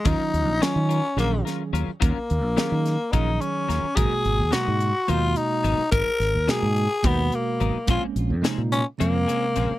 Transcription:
<<
  \new Staff \with { instrumentName = "Tenor saxophone" } { \time 7/8 \key aes \mixolydian \tempo 4 = 107 ees'4 des'4 bes8 r4 | bes2 ees'8 des'4 | aes'4 ges'4 f'8 ees'4 | bes'4 aes'4 ces'8 bes4 |
f'8 r4 des'8 bes4. | }
  \new Staff \with { instrumentName = "Clean electric guitar" } { \time 7/8 \key aes \mixolydian <ges des' f' bes'>8 r8 <ges des' f' bes'>8 <des' f' bes'>8 <ges des' f' bes'>8 <des' f' bes'>8 <ges des' f' bes'>8 | <ges des' f' bes'>8 r8 <ges des' f' bes'>8 r8 <ges des' f' bes'>8 r8 <ges des' f' bes'>8 | <ges ces' ees' bes'>8 r8 <ges ces' ees' bes'>8 r8 <ges ces' ees' bes'>8 r8 <ges ces' ees' bes'>8 | <ges ces' ees' bes'>8 r8 <ges ces' ees' bes'>8 r8 <ges ces' ees' bes'>8 r8 <ges ces' ees' bes'>8 |
<f c' des' aes'>8 r8 <f c' des' aes'>8 r8 <f c' des' aes'>8 <c' des' aes'>8 <f c' des' aes'>8 | }
  \new Staff \with { instrumentName = "Tine electric piano" } { \time 7/8 \key aes \mixolydian <ees ges des' f'>4 <ees ges des' f'>8 r8 <ees ges des' aes'>4. | r4 <ees ges des' aes'>8 r8 <ees ges des' aes'>4. | <ces aes bes ges'>4 <ces aes bes ges'>8 r8 <ces aes bes ges'>4. | r4 <ces aes bes ges'>8 r8 <ces aes bes ges'>4. |
<aes bes c' des'>4 <c aes bes ees'>8 r8 <c aes bes c'>4. | }
  \new Staff \with { instrumentName = "Fingered electric bass" } { \clef bass \time 7/8 \key aes \mixolydian ees,16 r16 ees,16 bes,,16 r16 ees8 r16 bes,,8 r8 ees,16 r16 | ees,16 r16 ees,16 bes,,16 r16 ees8 r16 bes,,8 r8 ees,16 r16 | aes,,16 r16 aes,,16 ees,16 r16 aes,8 r16 ees,8 r8 aes,,16 r16 | aes,,16 r16 aes,,16 ees,16 r16 aes,8 r16 ees,8 r8 aes,,16 r16 |
bes,,16 r16 bes,,16 f,16 r16 bes,8 r16 f,8 r8 bes,,16 r16 | }
  \new DrumStaff \with { instrumentName = "Drums" } \drummode { \time 7/8 <hh bd>8 hh8 <hh sn>8 hh8 hh8 <hh sn>8 hh8 | <hh bd>8 hh8 <hh sn>8 <hh sn>8 <hh bd>8 hh8 <hh sn>8 | <hh bd>8 hh8 <hh sn>8 hh8 hh8 hh8 hh8 | <hh bd>8 <hh sn>8 <hh sn>8 hh8 <hh bd>8 hh8 hh8 |
<hh bd>8 hh8 <hh sn>8 hh8 hh8 hh8 hh8 | }
>>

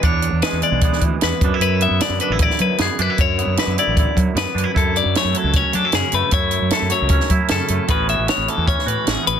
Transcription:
<<
  \new Staff \with { instrumentName = "Clean electric guitar" } { \time 4/4 \key d \lydian \tempo 4 = 153 cis''4 b'8 d''4 r8 b'4 | b'8 e''8 d''8 b'8 d''8 b'8 gis'8 b'8 | cis''4 b'8 d''4 r8 b'4 | a'8 d''8 cis''8 a'8 cis''8 a'8 gis'8 b'8 |
cis''4 a'8 cis''4 r8 a'4 | b'8 e''8 cis''8 a'8 cis''8 b'8 gis'8 b'8 | }
  \new Staff \with { instrumentName = "Clean electric guitar" } { \time 4/4 \key d \lydian << { d'4 gis4 b4. d'16 e'16~ | e'8 b4 d'16 e'16 e'4 b8 d'16 e'16~ | e'8 b4 e'8 e'4 b8 d'16 e'16 | e'4 a4 cis'8 d'16 e'8. a8 |
e'4 a4 cis'8 e'4 a8 | <e b cis' fis'>4 b4 cis'8 fis'4 b8 | } \\ { e,4. e4 d,8 e,8 fis,8~ | fis,4 d4. fis,4 fis,8~ | fis,4 d4. fis,4 fis,8 | fis,4. fis4. cis4 |
fis,4. fis4. cis4 | a,4. e4. e,4 | } >> }
  \new Staff \with { instrumentName = "Fingered electric bass" } { \clef bass \time 4/4 \key d \lydian e,8. e,16 r16 e,16 r16 b,,8 r16 e16 r16 e,16 r16 fis,16 r16 | fis,8. fis,16 r16 fis,16 r16 a,,8 r16 fis16 r16 fis,16 r16 fis,16 r16 | fis,8. fis,16 r16 fis,16 r16 a,,8 r16 fis16 r16 fis,16 r16 fis,16 r16 | fis,8. fis,16 r16 fis,16 r16 cis,8 r16 fis16 r16 fis,16 r16 fis,16 r16 |
fis,8. fis,16 r16 fis,16 r16 cis,8 r16 fis16 r16 fis,16 r16 fis,16 r16 | a,,8. a,,16 r16 a,,16 r16 e,8 r16 a,16 r16 a,,16 r16 a,,16 r16 | }
  \new DrumStaff \with { instrumentName = "Drums" } \drummode { \time 4/4 <hh bd>8 hh8 <hh sn>8 hh8 <hh bd>16 sn16 <hh bd>8 <hh sn>8 <hh bd>8 | hh8 hh8 <hh sn>8 hh8 <hh bd>16 sn16 hh8 <hh sn>8 hh8 | <hh bd>8 hh8 <hh sn>8 hh8 <hh bd>8 <hh bd>8 <hh sn>8 hh8 | <hh bd>8 hh8 <hh sn>8 hh8 <hh bd>8 hh8 <hh sn>8 hh8 |
<hh bd>8 hh8 <hh sn>8 hh8 <hh bd>16 sn16 <hh bd>8 <hh sn>8 hh8 | <hh bd>8 hh8 <hh sn>8 hh8 <hh bd>16 sn16 hh8 <hh sn>8 hh8 | }
>>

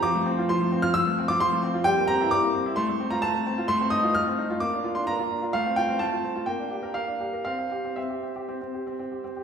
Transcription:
\new Staff \with { instrumentName = "Grand piano" } { \time 4/4 \key f \major \tempo 4 = 130 << { d'''4 c'''8. f'''16 e'''8. d'''16 c'''4 | g''8 bes''8 d'''4 c'''8. bes''16 a''4 | c'''8 ees'''8 f'''4 d'''8. c'''16 bes''4 | f''8 g''8 a''4 g''4 f''4 |
f''4 e''2~ e''8 r8 | } \\ { f16 a16 c'16 f'16 f16 a16 c'16 f'16 f16 a16 c'16 f'16 f16 a16 c'16 f'16 | g16 bes16 c'16 e'16 g16 bes16 c'16 e'16 a16 a16 c'16 f'16 a16 a16 c'16 f'16 | a16 c'16 ees'16 f'16 a16 c'16 ees'16 f'16 bes16 d'16 f'16 d'16 bes16 f'16 d'16 f'16 | a16 c'16 f'16 c'16 a16 f'16 c'16 f'16 bes16 d'16 g'16 bes'16 bes16 d'16 g'16 bes'16 |
c'16 c'16 g'16 c'16 c'16 g'16 c'16 g'16 c'16 c'16 g'16 c'16 c'16 g'16 c'16 g'16 | } >> }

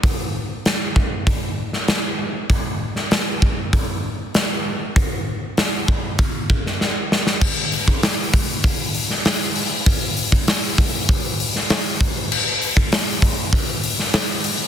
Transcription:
\new DrumStaff \with { instrumentName = "Drums" } \drummode { \time 4/4 \tempo 4 = 98 <hho bd>4 <hho sn>8 bd8 <hho bd>8. sn16 <hho sn>4 | <hho bd>8. sn16 <hho sn>8 bd8 <hho bd>4 <hho sn>4 | <hho bd>4 <hho sn>8 bd8 <hho bd>8 bd16 sn16 sn8 sn16 sn16 | <cymc bd>8 hho16 bd16 <hho sn>8 <hho bd>8 <hho bd>8 hho16 sn16 <hho sn>8 hho8 |
<hho bd>8 hho16 bd16 <hho sn>8 <hho bd>8 <hho bd>8 hho16 sn16 <hho sn>8 <hho bd>8 | cymc8 hho16 bd16 <hho sn>8 <hho bd>8 <hho bd>8 hho16 sn16 <hho sn>8 hho8 | }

